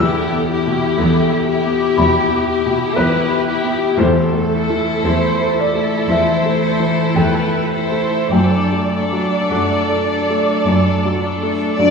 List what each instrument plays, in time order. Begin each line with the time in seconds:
Already playing: cello section E2
0.00 felt piano E2 E6, violin section E4 G4, viola section A4
0.32 felt piano B3
0.48 violin section E4 G4, viola section G4
0.66 felt piano B2
0.98 cello section E2, felt piano B3, viola section A4
1.31 felt piano G4
1.48 violin section E4 G4, viola section G4
1.66 felt piano B3
1.98 cello section E2, felt piano B2 B5
2.31 felt piano B3
2.49 violin section E4 G4
2.66 felt piano B2
2.95 cello section E2, felt piano B3 B4, viola section B4
3.30 felt piano G4
3.46 violin section E4 G4, viola section G4
3.63 felt piano B3
3.97 felt piano E2 C5, cello section E2, viola section A4
4.33 felt piano A3
4.54 violin section E4 A4
4.70 felt piano E3
5.05 cello section E2, felt piano A3, viola section C5
5.40 felt piano A4
5.58 violin section E4 A4, viola section A4, felt piano D5
5.74 felt piano A3
6.09 cello section E2, felt piano E3 E5, viola section C5
6.45 felt piano A3
6.63 violin section E4 A4
6.80 felt piano E3
7.16 cello section E2, felt piano A3 G5, viola section B4
7.54 felt piano A4
7.70 violin section E4 A4, viola section C5
7.91 felt piano A3
8.29 cello section F#2, violin section D4, viola section D5, felt piano G5
8.33 felt piano F#2, violin section A4
8.73 felt piano A3
8.93 violin section D4 A4
9.12 felt piano F#3
9.50 cello section F#2, felt piano A3 F#5
9.89 felt piano A4
10.08 violin section D4 A4
10.30 felt piano A3
10.65 cello section F#2, felt piano F#2
11.05 felt piano F#3
11.21 violin section D4 A4
11.43 felt piano A3
11.76 cello section F#2, felt piano F#3, violin section D4 D5, clarinet D4, flute D5